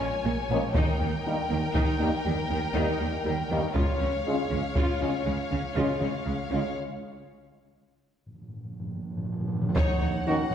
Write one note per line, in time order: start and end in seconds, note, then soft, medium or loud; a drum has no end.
0.00 0.75 C#5 medium
0.00 0.71 G#5 medium
0.24 0.33 A#1 soft
0.24 0.32 A#2 medium
0.24 0.32 A#3 medium
0.49 0.57 A#1 medium
0.49 0.58 A#2 medium
0.49 0.59 F3 medium
0.49 0.60 G#3 medium
0.49 0.59 A#3 medium
0.49 0.58 C#4 medium
0.49 0.59 C#4 medium
0.74 0.82 D#2 medium
0.74 0.83 D#3 medium
0.74 0.99 D#4 medium
0.74 3.75 A#4 medium
0.74 3.72 G5 medium
0.74 taiko medium
0.99 1.07 D#2 medium
0.99 1.09 D#3 medium
0.99 1.08 A#3 soft
1.26 1.35 D#3 medium
1.26 1.35 G3 medium
1.26 1.34 A#3 medium
1.26 1.35 D#4 medium
1.50 1.58 D#2 medium
1.50 1.58 D#3 soft
1.50 1.58 A#3 medium
1.74 1.83 D#2 medium
1.74 1.83 D#3 medium
1.74 1.98 D#4 medium
1.74 taiko medium
2.00 2.08 D#2 soft
2.00 2.09 D#3 soft
2.00 2.09 D#3 medium
2.00 2.09 G3 medium
2.00 2.09 A#3 medium
2.00 2.08 A#3 medium
2.00 2.09 D#4 medium
2.24 2.33 D#2 medium
2.24 2.33 D#3 medium
2.24 2.32 G3 medium
2.50 2.58 D#2 soft
2.50 2.58 D#3 medium
2.50 2.58 A#3 medium
2.74 2.82 D#2 medium
2.74 2.83 D#3 medium
2.74 2.85 D#3 medium
2.74 2.85 G3 medium
2.74 2.84 A#3 medium
2.74 2.98 D#4 medium
2.74 2.84 D#4 medium
2.99 3.07 D#2 medium
2.99 3.08 D#3 soft
2.99 3.08 A#3 medium
3.25 3.33 D#2 soft
3.25 3.33 D#3 medium
3.25 3.33 G3 medium
3.50 3.58 D#2 medium
3.50 3.58 D#3 medium
3.50 3.60 D#3 medium
3.50 3.60 G3 medium
3.50 3.58 A#3 medium
3.50 3.60 A#3 medium
3.50 3.60 D#4 medium
3.75 3.83 C#2 medium
3.75 3.83 C#3 medium
3.75 3.98 F4 medium
3.75 6.72 C#5 medium
3.75 6.73 F5 medium
3.75 taiko medium
4.00 4.09 C#2 medium
4.00 4.08 C#3 medium
4.00 4.09 C#4 soft
4.26 4.35 C#3 medium
4.26 4.35 G#3 medium
4.26 4.36 C#4 medium
4.26 4.36 F4 medium
4.50 4.58 C#2 medium
4.50 4.58 C#3 soft
4.50 4.59 C#4 soft
4.75 4.83 C#2 medium
4.75 4.84 C#3 medium
4.75 4.99 F4 medium
4.75 taiko medium
5.01 5.09 C#2 medium
5.01 5.09 C#3 soft
5.01 5.10 C#3 medium
5.01 5.10 G#3 medium
5.01 5.09 C#4 medium
5.01 5.10 C#4 medium
5.01 5.10 F4 medium
5.25 5.35 C#2 medium
5.25 5.33 C#3 soft
5.25 5.34 G#3 medium
5.51 5.59 C#2 soft
5.51 5.59 C#3 soft
5.51 5.59 C#4 soft
5.75 5.84 C#2 medium
5.75 5.83 C#3 medium
5.75 5.85 C#3 medium
5.75 5.85 G#3 medium
5.75 5.86 C#4 medium
5.75 5.99 F4 medium
5.75 5.86 F4 medium
6.00 6.10 C#2 soft
6.00 6.08 C#3 soft
6.00 6.10 C#4 soft
6.25 6.34 C#2 soft
6.25 6.33 C#3 soft
6.25 6.35 G#3 soft
6.51 6.59 C#2 soft
6.51 6.59 C#3 medium
6.51 6.61 C#3 soft
6.51 6.61 G#3 soft
6.51 6.60 C#4 medium
6.51 6.60 F4 medium
8.26 8.33 A#2 soft
8.34 8.40 A#2 soft
8.41 8.47 A#2 soft
8.48 8.55 A#2 soft
8.56 8.63 A#2 soft
8.64 8.71 A#2 soft
8.72 8.78 A#2 soft
8.80 8.86 A#2 soft
8.87 8.94 A#2 soft
8.95 9.01 A#2 soft
9.02 9.09 A#2 soft
9.10 9.16 A#2 soft
9.17 9.23 A#2 medium
9.25 9.31 A#2 medium
9.32 9.39 A#2 medium
9.40 9.47 A#2 medium
9.48 9.54 A#2 medium
9.55 9.60 A#2 medium
9.62 9.68 A#2 medium
9.69 9.76 A#2 medium
9.75 9.84 D#2 medium
9.75 10.48 D#3 medium
9.75 10.00 D#4 medium
9.75 9.99 C#5 medium
9.75 10.55 F#5 medium
9.75 taiko loud
10.00 10.09 D#2 soft
10.00 10.10 D#2 medium
10.00 10.09 D#4 soft
10.00 10.08 C#5 soft
10.25 10.33 D#2 soft
10.25 10.34 D#2 soft
10.25 10.36 D#3 medium
10.25 10.36 A#3 medium
10.25 10.35 C#4 medium
10.25 10.35 D#4 medium
10.25 10.35 D#4 soft
10.25 10.35 F#4 medium
10.25 10.34 A#4 soft
10.51 10.55 D#2 soft
10.51 10.55 D#2 medium
10.51 10.55 D#4 medium
10.51 10.55 C#5 soft
10.51 taiko low medium